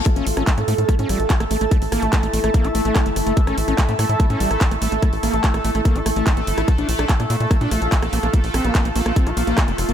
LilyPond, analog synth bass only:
\new Staff \with { instrumentName = "Analog synth bass" } { \clef bass \time 4/4 \tempo 4 = 145 r16 a,,16 a,,16 a,,16 r16 a,16 a,16 a,16 r16 a,16 a,,16 a,,16 r16 a,,16 a,,16 a,,16 | r16 a,,16 a,,16 a,,16 r16 a,,16 a,,16 a,,16 r16 a,,16 a,,16 a,,16 r16 g,,16 g,,16 g,,16 | r16 a,,16 a,,16 a,,16 r16 a,16 a,16 a,16 r16 a,16 a,,16 a,,16 r16 a,,16 a,,16 a,,16 | r16 a,,16 a,,16 a,,16 r16 a,,16 a,,16 a,,16 r16 a,,16 a,,16 a,,16 r16 a,,16 g,,16 a,,16 |
r16 bes,,16 bes,,16 bes,,16 r16 bes,16 bes,16 bes,16 r16 bes,16 bes,,16 bes,,16 r16 bes,,16 bes,,16 bes,,16 | r16 bes,,16 bes,,16 bes,,16 r16 bes,,16 bes,,16 bes,,16 r16 bes,,16 bes,,16 bes,,16 r16 f,,16 f,,16 f,,16 | }